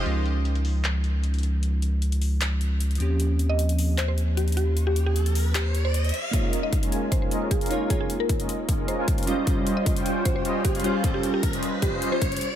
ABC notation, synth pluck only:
X:1
M:4/4
L:1/16
Q:1/4=153
K:Dblyd
V:1 name="Synth pluck"
z16 | z16 | z3 e z4 c c z2 G z G z | z G z G z4 G z2 c3 z2 |
z3 e z4 c c z2 A z3 | A A z B z6 c3 z3 | z3 e z4 c c z2 G z G z | z G z G z4 G z2 c3 z2 |]